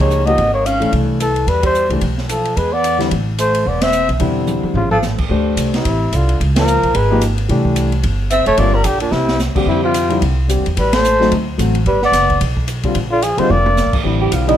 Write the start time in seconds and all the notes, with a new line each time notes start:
Already playing: C#2 F3 A#3 D#4 G4
0.00 G#3 C#5
0.11 hi-hat pedal
0.26 F3 A#3 B3 D#4 G4 D#5, ride
0.38 G#1, kick, ride
0.53 A#3 C#5
0.66 C#4 F5, hi-hat pedal, ride
0.80 A#1 E3 A3 D4 A4, ride
0.92 C2, kick, ride
1.20 E3 A4, hi-hat pedal, ride
1.36 ride
1.47 E2 G3 B4, kick, ride
1.62 G3 C5, kick, ride
1.75 hi-hat pedal
1.89 C2 E3 A3 D4 G4, ride
2.01 B1, kick, ride
2.18 snare
2.29 F3 A4, hi-hat pedal, ride
2.45 ride
2.56 E2 G#3 B4, kick, ride
2.73 B3 D5
2.84 hi-hat pedal, ride
2.98 D3 G3 C4 E4, snare, ride
3.11 A1, kick, ride
3.38 A3 C5, hi-hat pedal, ride
3.55 ride
3.65 E1 B3 D5, kick
3.81 C4 E5, snare, ride
3.92 hi-hat pedal
4.09 B1, ride
4.19 E1 D3 G3 C4 E4, kick, ride
4.47 hi-hat pedal, mid tom
4.63 muted upright bass stroke, mid tom
4.74 A1 C#3 F4, floor tom
4.91 F3 A4, mid tom
5.02 snare, hi-hat pedal
5.18 D#2, kick, crash
5.29 D2 A3 D4 G4 C5, kick
5.56 C2, hi-hat pedal, ride
5.74 C3 E4, snare, ride
5.85 A1, kick, ride
6.12 C2 D3 F4, hi-hat pedal, ride
6.29 ride
6.40 C#2, kick, ride
6.56 F3 A#4, snare, ride
6.68 hi-hat pedal
6.83 B1, ride
6.94 G#1 G#3 B4, kick, ride
7.10 F3 A#3 D#4 G4
7.21 hi-hat pedal, ride
7.38 ride
7.49 C2 E3 A3 D4 G4, kick, ride
7.65 kick
7.76 hi-hat pedal, ride
7.92 ride
8.03 G1, kick, ride
8.30 C4 E5, hi-hat pedal, ride
8.46 F1 A3 C#5, ride
8.57 G1 D3 G3 A#3 C4 F4 D5, kick, ride
8.74 G3 A#4
8.84 A#1 D3 G4, hi-hat pedal, ride
9.00 A#2 D4, ride
9.11 C2 C3 E4, snare
9.28 snare
9.39 snare, hi-hat pedal
9.55 D3 G3 C4 G4, muted upright bass stroke, kick, crash
9.66 F2 C3 E4, kick
9.83 C3 F4
9.94 hi-hat pedal, ride
10.09 D3 G3 C4 E4, ride
10.22 C2, kick, ride
10.48 D3 G3 C4 G4, hi-hat pedal, ride
10.58 F2
10.66 E2, ride
10.77 A1 G3 B4, kick, ride
10.93 A3 C5, snare, ride
11.05 hi-hat pedal
11.20 F#3 A3 C4 D#4, snare
11.32 D2, kick, ride
11.57 A1 F#3 A3 C4 F#4, hi-hat pedal, ride
11.75 ride
11.86 G1 G3 B4, kick, ride
12.02 B3 D5, snare
12.12 F#1, snare, hi-hat pedal, ride
12.30 kick, ride
12.41 B1, kick, ride
12.57 kick
12.68 hi-hat pedal, ride
12.83 D3 G3 C4 F4, kick, ride
12.95 A#1, kick, ride
13.11 D3 F4
13.22 F3 G#4, hi-hat pedal, ride
13.37 D3 G3 G#3 C4 F4 C5, muted upright bass stroke, ride
13.50 F1 A#3 D5, high tom
13.66 high tom
13.77 snare, hi-hat pedal
13.86 G#1
13.93 A#1, kick, crash
14.03 A1 D3 G3 C4 E4, kick
14.21 G4
14.32 B1 F4, kick, hi-hat pedal, ride
14.48 D3 G3 C4 D#4 E4, ride